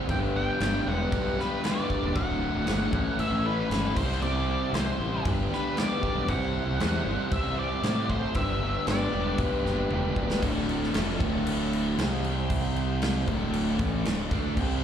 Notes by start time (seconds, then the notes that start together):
0.08 G1 G2 D3 G3 B3 D4 G4 D5 G5, kick, crash
0.35 G3 B3 D4 G4 G5
0.60 G1 G2 D3 G3 B3 D4 G4, snare, crash
0.86 E1 G3 B3 D4 G4 F#5
1.12 B1 G3 B3 D4 G4, kick, crash
1.38 G2 D3 G3 B3 D4 G4 B4, snare
1.62 G2 D3 G3 B3 D4 G4 D5, snare, crash
1.89 G3 B3 D4 G4, kick
2.02 D#1
2.15 D1 D2 A2 D3 A3 D4 F#4 D5 F#5, kick, crash
2.40 D3 A3 F#4
2.54 D1
2.66 G1 D2 A2 D3 A3 F#4, snare, crash
2.91 A1 A2 E3 A3 C#4 E4 A4 C#5, kick
3.17 A1 A3 C#4 E4 A4 E5, crash
3.30 A1
3.44 A2 E3 A3 C#4 E4 A4 B4
3.69 G1 A2 E3 A3 C#4 E4 A4, snare, crash
3.95 C2 C3 G3 C4 E4 G4 C5, kick, crash
4.11 snare
4.21 C3 G3 C4 E4 G4 C5 D5, crash
4.46 C4 E4 G4 C5
4.72 C2 C3 G3 C4 E4 G4 C5, snare, crash
4.98 A1 C4 E4 G4 C5
5.24 G1 G2 D3 G3 B3 D4 G4 B4, kick, crash
5.51 G2 D3 G3 B3 D4 G4 B4, snare
5.76 G2 D3 G3 B3 D4 G4 D5, snare, crash
6.01 G3 B3 D4 G4, kick
6.15 B1
6.27 C2 C3 G3 C4 E4 G4 C5 F#5, kick, crash
6.53 C4 E4 G4 C5
6.67 C2
6.79 E2 C3 G3 C4 E4 G4 C5, snare, crash
7.05 G1 C4 E4 G4 C5
7.31 C2 C4 E4 G4 C5 E5, kick, crash
7.43 C2
7.56 C3 G3 C4 E4 G4 C5 D5
7.82 A2 C3 G3 C4 E4 G4 C5, snare, crash
8.09 C4 E4 G4 C5, kick
8.34 G1 G2 D3 G3 B3 D4 G4 B4 E5, kick, crash
8.62 G3 B3 D4 G4
8.87 G1 G2 D3 G3 B3 D4 G4 D5, snare, crash
9.12 E1 G3 B3 D4 G4
9.38 B1 G3 B3 D4 G4, kick, crash
9.63 F#1 G2 D3 G3 B3 D4 G4, snare
9.89 E1 G2 D3 G3 B3 D4 G4, high tom
10.16 D1 G3 B3 D4 G4, kick
10.30 snare
10.41 D1 D2 A2 D3 F#3 A3 D4 A4, kick, crash
10.69 crash
10.84 snare
10.94 F1 F2 C3 F3, snare, crash
11.20 D1 D2 A2 D3, kick, crash
11.47 crash
11.73 crash
11.97 C2 C3 G3 C4 G4 C5, snare, crash
12.24 crash
12.50 kick, crash
12.76 crash
13.02 snare, crash
13.26 D1 D2 A2 D3 A3 D4 F#4 D5, kick, crash
13.54 crash
13.79 A1 A2 E3 A3, kick, crash
14.05 D1 D2 A2, snare, crash
14.31 D2 D3 A3 D4, kick, crash
14.55 C2 C3 G3 C4 G4 C5, kick, crash